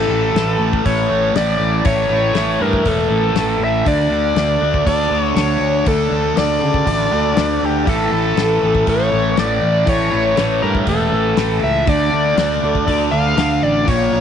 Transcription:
Already playing: distorted electric guitar A2 E3, tanpura A2 E3 A3, analog synth lead A4
0.08 fingered electric bass A1, distorted electric guitar E3 A3
0.35 fingered electric bass A1, distorted electric guitar A2 E3 A3, snare, open hi-hat
0.59 fingered electric bass A1, distorted electric guitar E3 A3
0.73 kick
0.85 fingered electric bass A1, distorted electric guitar A2 E3 A3, analog synth lead C#5, kick, open hi-hat
1.09 fingered electric bass A1, distorted electric guitar E3 A3
1.35 fingered electric bass A1, distorted electric guitar A2 E3 A3, analog synth lead D5, snare, open hi-hat
1.60 fingered electric bass A1
1.85 fingered electric bass A1, distorted electric guitar A2 E3 A3, analog synth lead C#5, kick, open hi-hat
2.10 fingered electric bass A1, distorted electric guitar E3 A3
2.34 fingered electric bass A1, distorted electric guitar A2 E3 A3, snare, open hi-hat
2.60 fingered electric bass G2, distorted electric guitar E3 A3, analog synth lead A#4
2.73 kick
2.84 fingered electric bass E1, distorted electric guitar A2 E3 A3, analog synth lead A4, kick, open hi-hat
3.08 fingered electric bass A1, distorted electric guitar E3 A3
3.34 fingered electric bass A1, distorted electric guitar A2 E3, snare, open hi-hat
3.38 distorted electric guitar A3
3.60 fingered electric bass A1, analog synth lead E5
3.85 fingered electric bass D2, distorted electric guitar D3 A3 D4, analog synth lead D5, kick, open hi-hat
4.10 fingered electric bass D2, distorted electric guitar A3 D4
4.36 fingered electric bass D2, distorted electric guitar D3 A3 D4, snare, open hi-hat
4.61 fingered electric bass D2, distorted electric guitar A3 D4
4.74 kick
4.85 fingered electric bass D2, distorted electric guitar D3 A3 D4, analog synth lead D5, kick, open hi-hat
5.10 fingered electric bass D2, distorted electric guitar A3 D4
5.21 analog synth lead C#5
5.35 fingered electric bass D2, distorted electric guitar D3 A3 D4, analog synth lead C#5, snare, open hi-hat
5.60 fingered electric bass D2
5.85 fingered electric bass D2, distorted electric guitar D3 A3 D4, analog synth lead A4, kick, open hi-hat
6.10 fingered electric bass D2, distorted electric guitar A3 D4
6.36 fingered electric bass D2, distorted electric guitar D3 A3 D4, analog synth lead D5, snare, open hi-hat
6.61 fingered electric bass C#3, distorted electric guitar A3 D4
6.74 kick
6.86 fingered electric bass A1, distorted electric guitar D3 A3 D4, kick, open hi-hat
7.12 fingered electric bass D2, distorted electric guitar A3 D4
7.36 fingered electric bass D2, distorted electric guitar D3 A3 D4, snare, open hi-hat
7.63 fingered electric bass D2, analog synth lead G4
7.86 fingered electric bass A1, distorted electric guitar A2 E3 A3, analog synth lead A4, kick, open hi-hat
8.11 fingered electric bass A1, distorted electric guitar E3 A3
8.35 fingered electric bass A1, distorted electric guitar A2 E3 A3, snare, open hi-hat
8.62 fingered electric bass A1, distorted electric guitar E3 A3
8.75 kick
8.86 fingered electric bass A1, distorted electric guitar A2 E3 A3, analog synth lead C#5, kick, open hi-hat
9.11 fingered electric bass A1, distorted electric guitar E3 A3
9.37 fingered electric bass A1, distorted electric guitar A2 E3 A3, analog synth lead D5, snare, open hi-hat
9.63 fingered electric bass A1
9.86 fingered electric bass A1, distorted electric guitar A2 E3 A3, analog synth lead C#5, kick, open hi-hat
10.12 fingered electric bass A1, distorted electric guitar E3 A3
10.37 fingered electric bass A1, distorted electric guitar A2 E3 A3, snare, open hi-hat
10.62 fingered electric bass G2, distorted electric guitar E3 A3, analog synth lead A#4
10.75 kick
10.86 fingered electric bass E1, distorted electric guitar A2 E3 A3, analog synth lead A4, kick, open hi-hat
11.12 fingered electric bass A1, distorted electric guitar E3 A3
11.36 fingered electric bass A1, distorted electric guitar A2 E3 A3, snare, open hi-hat
11.63 fingered electric bass C#2, analog synth lead E5
11.86 fingered electric bass D2, distorted electric guitar D3 A3 D4, analog synth lead D5, kick, open hi-hat
12.10 fingered electric bass D2, distorted electric guitar A3 D4
12.37 fingered electric bass D2, distorted electric guitar D3 A3 D4, snare, open hi-hat
12.62 fingered electric bass D2, distorted electric guitar A3 D4
12.75 kick
12.86 fingered electric bass D2, distorted electric guitar D3 A3 D4, analog synth lead D5, kick, open hi-hat
13.11 fingered electric bass D2, distorted electric guitar A3 D4, analog synth lead F5
13.35 fingered electric bass D2, distorted electric guitar D3 A3 D4, snare, open hi-hat
13.62 fingered electric bass A1, analog synth lead D5
13.86 fingered electric bass A#1, distorted electric guitar A#2 F3 A#3, analog synth lead C#5, kick, open hi-hat
14.13 fingered electric bass A#1, distorted electric guitar F3 A#3

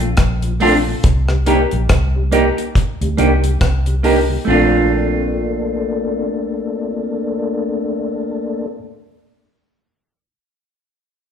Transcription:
Already playing: fingered electric bass A#1
0.00 tonewheel organ A#2 F3, closed hi-hat
0.17 fingered electric bass A#1, kick, cross-stick, closed hi-hat
0.42 tonewheel organ A#2 F3, closed hi-hat
0.60 clean electric guitar A3 D4 F4, tonewheel organ A3 A#3 D4, tine electric piano C4 D4 F4 A4, open hi-hat
0.87 tonewheel organ A#2 F3, tine electric piano F4 A4
1.04 fingered electric bass C2, kick, closed hi-hat
1.29 tonewheel organ C3 G3, cross-stick
1.46 clean electric guitar A#3 D#4 G4, tonewheel organ A#3 C4 D#4, tine electric piano D4 D#4 G4 A#4, closed hi-hat
1.71 fingered electric bass A#1, tonewheel organ C3 G3, closed hi-hat
1.89 fingered electric bass C2, kick, cross-stick, closed hi-hat
2.16 tonewheel organ C3 G3
2.32 clean electric guitar A#3 D#4 G4, tonewheel organ A#3 C4 D#4, tine electric piano D4 D#4 G4 A#4, closed hi-hat
2.57 muted clean electric guitar stroke, closed hi-hat
2.75 kick, closed hi-hat
3.01 fingered electric bass D2, tonewheel organ C3 G3, closed hi-hat
3.17 fingered electric bass C2, clean electric guitar A#3 D#4 G4, tonewheel organ A#3 C4 D#4, tine electric piano D4 D#4 G4 A#4, closed hi-hat
3.44 tonewheel organ C3 G3, closed hi-hat
3.61 fingered electric bass C2, kick, cross-stick, closed hi-hat
3.86 tonewheel organ C3 G3, closed hi-hat
4.03 clean electric guitar A#3 D#4 G4, tonewheel organ A#3 C4 D#4, tine electric piano D4 D#4 G4 A#4, open hi-hat
4.29 tonewheel organ C3 G3
4.45 fingered electric bass A#1, clean electric guitar A3 D4, tonewheel organ A3 A#3 D4, tine electric piano C4 D4 F4 A4
4.50 clean electric guitar F4

